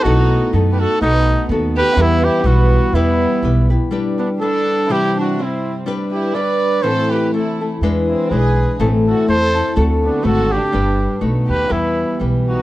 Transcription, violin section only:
X:1
M:2/4
L:1/16
Q:"Swing" 1/4=123
K:Em
V:1 name="Violin section"
^D4 z3/2 G/2 F2 | B,4 z2 G2 | B,2 E2 B,4 | B,6 z2 |
[K:G] z2 B,2 D4 | E2 D2 C3 z | z2 E2 B4 | A2 G2 E3 z |
z2 C2 ^G4 | z2 F2 A4 | z2 B,2 F2 D2- | D4 z2 G2 |
[K:Em] B,4 z2 ^D2 |]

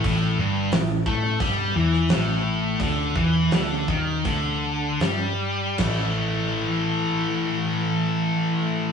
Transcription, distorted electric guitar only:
X:1
M:4/4
L:1/8
Q:1/4=80
K:Clyd
V:1 name="Distorted electric guitar" clef=bass
A,, G,, A,, A, G, E, A,,2 | D, E, D, ^D, =D,2 G,2 | [A,,E,A,]8 |]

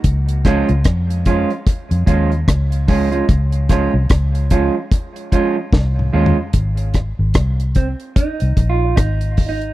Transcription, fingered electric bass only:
X:1
M:4/4
L:1/16
Q:"Swing 16ths" 1/4=74
K:Ab
V:1 name="Fingered electric bass" clef=bass
D,,3 D,, F,,3 z2 F,, E,,2 D,,4 | D,,3 C,, D,,3 z4 z C,,2 E,, z | A,,,3 A,,, C,,3 z2 C,, B,,,2 A,,,4 |]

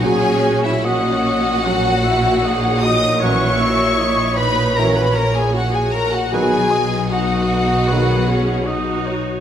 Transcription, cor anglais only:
X:1
M:4/4
L:1/8
Q:1/4=77
K:F#mix
V:1 name="Cor anglais"
c2 d2 c e d c | f e d c4 z | B d d2 B c d c |]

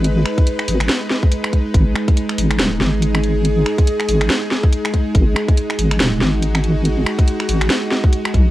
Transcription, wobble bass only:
X:1
M:4/4
L:1/8
Q:"Swing 16ths" 1/4=141
K:G#m
V:1 name="Wobble bass" clef=bass
G,,, z2 G,,, z4 | G,,, z2 G,,, D,,, G,,,3- | G,,, z2 G,,, z4 | G,,, z2 G,,, D,,, G,,,3- |
G,,, z2 G,,, z3 B,,, |]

